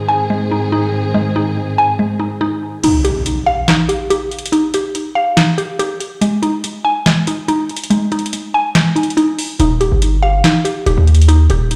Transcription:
0.00 2.80 G#2 medium
0.00 2.80 D#3 medium
0.00 0.29 G#3 medium
0.00 2.80 C4 medium
0.00 0.50 D#4 medium
0.00 2.80 G#4 medium
0.08 1.35 G#5 medium
0.30 1.13 G#3 medium
0.51 0.71 D#4 medium
0.72 1.35 D#4 medium
1.14 1.98 G#3 medium
1.36 2.18 D#4 medium
1.78 2.84 G#5 loud
1.99 2.84 G#3 medium
2.20 2.40 D#4 medium
2.41 2.83 D#4 medium
2.84 3.67 D#4 medium
2.84 closed hi-hat medium
2.84 crash medium
2.84 impact medium
3.05 3.87 G4 medium
3.05 closed hi-hat medium
3.26 closed hi-hat medium
3.46 4.73 F5 loud
3.68 4.51 D#4 medium
3.68 snare loud
3.68 clap medium
3.68 closed hi-hat medium
3.89 4.09 G4 medium
3.89 closed hi-hat medium
4.10 4.73 G4 loud
4.10 closed hi-hat medium
4.31 closed hi-hat soft
4.39 closed hi-hat medium
4.46 closed hi-hat medium
4.52 5.36 D#4 medium
4.52 closed hi-hat medium
4.74 5.57 G4 medium
4.74 closed hi-hat medium
4.95 closed hi-hat medium
5.15 6.21 F5 medium
5.37 6.21 D#4 medium
5.37 snare loud
5.37 clap medium
5.37 closed hi-hat medium
5.58 5.78 G4 medium
5.58 closed hi-hat medium
5.79 6.22 G4 loud
5.79 closed hi-hat medium
6.00 closed hi-hat medium
6.21 7.05 G#3 medium
6.21 closed hi-hat medium
6.42 7.26 D#4 medium
6.42 closed hi-hat medium
6.64 closed hi-hat medium
6.85 8.12 G#5 loud
7.06 7.89 G#3 medium
7.06 snare loud
7.06 clap medium
7.06 closed hi-hat medium
7.27 7.47 D#4 medium
7.27 closed hi-hat medium
7.48 8.11 D#4 medium
7.48 closed hi-hat medium
7.69 closed hi-hat soft
7.77 closed hi-hat medium
7.84 closed hi-hat medium
7.90 8.74 G#3 medium
7.90 closed hi-hat medium
8.12 8.94 D#4 medium
8.12 closed hi-hat soft
8.19 closed hi-hat medium
8.26 closed hi-hat medium
8.33 closed hi-hat medium
8.54 9.60 G#5 loud
8.75 9.60 G#3 medium
8.75 snare loud
8.75 clap medium
8.75 closed hi-hat medium
8.96 9.16 D#4 medium
8.96 closed hi-hat medium
9.03 closed hi-hat medium
9.10 closed hi-hat medium
9.17 9.59 D#4 loud
9.17 closed hi-hat medium
9.39 open hi-hat medium
9.60 9.91 D#1 loud
9.60 10.43 D#4 medium
9.60 closed hi-hat medium
9.81 10.63 G4 medium
9.81 closed hi-hat medium
9.92 10.42 G1 loud
10.02 closed hi-hat medium
10.23 11.50 F5 loud
10.44 11.27 D#4 medium
10.44 snare loud
10.44 clap medium
10.44 closed hi-hat medium
10.65 10.85 G4 medium
10.65 closed hi-hat medium
10.86 10.97 D#1 loud
10.86 11.49 G4 loud
10.86 closed hi-hat medium
10.98 11.48 D#2 loud
11.07 closed hi-hat soft
11.15 closed hi-hat medium
11.22 closed hi-hat medium
11.28 11.76 D#4 medium
11.28 closed hi-hat medium
11.50 11.76 D#1 loud
11.50 11.76 G4 medium
11.50 closed hi-hat medium
11.71 closed hi-hat medium

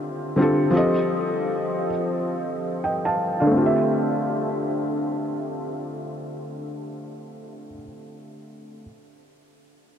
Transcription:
0.36 0.67 D3 medium
0.36 0.68 C4 medium
0.36 0.69 F4 medium
0.41 0.69 G4 medium
0.41 0.70 A4 medium
0.71 1.87 F3 medium
0.71 1.88 C4 medium
0.71 1.88 G4 medium
0.75 1.89 A4 medium
0.75 1.90 D#5 medium
2.84 3.04 D#5 soft
2.84 3.03 G5 medium
3.05 3.38 F5 medium
3.05 3.38 A5 medium
3.40 7.65 D3 medium
3.40 3.73 D5 soft
3.40 3.72 F5 medium
3.47 7.70 A3 medium
3.51 7.75 C4 medium
3.56 7.80 F4 medium
3.61 7.82 G4 medium
3.66 7.84 E5 medium

